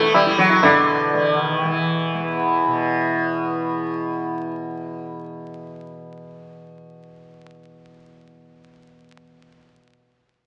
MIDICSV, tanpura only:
0, 0, Header, 1, 2, 480
1, 0, Start_track
1, 0, Tempo, 483871
1, 621, Time_signature, 5, 2, 24, 8
1, 10383, End_track
2, 0, Start_track
2, 0, Title_t, "Tanpura"
2, 0, Program_c, 0, 104
2, 0, Note_on_c, 0, 40, 68
2, 0, Note_on_c, 0, 47, 68
2, 0, Note_on_c, 0, 52, 71
2, 258, Note_off_c, 0, 52, 0
2, 258, Note_on_c, 0, 52, 66
2, 615, Note_off_c, 0, 47, 0
2, 615, Note_on_c, 0, 47, 62
2, 1122, Note_off_c, 0, 52, 0
2, 1122, Note_on_c, 0, 52, 63
2, 1623, Note_off_c, 0, 52, 0
2, 1623, Note_on_c, 0, 52, 59
2, 2118, Note_off_c, 0, 40, 0
2, 2122, Note_on_c, 0, 40, 73
2, 2619, Note_off_c, 0, 47, 0
2, 2619, Note_on_c, 0, 47, 70
2, 8715, Note_off_c, 0, 52, 0
2, 9215, Note_off_c, 0, 40, 0
2, 9712, Note_off_c, 0, 47, 0
2, 10383, End_track
0, 0, End_of_file